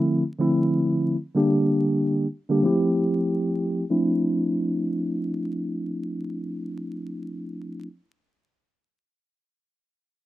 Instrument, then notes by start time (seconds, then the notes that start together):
tine electric piano
Already playing: D3 F3 A3 C4 E4
0.39 D3 F3 A3 C4 E4
1.35 D3 G3 A#3 D4 G4
2.49 D3 G3 A#3 D4 G4
2.63 F3 A3 C4 E4 G4
3.90 F3 A3 C4 D4 E4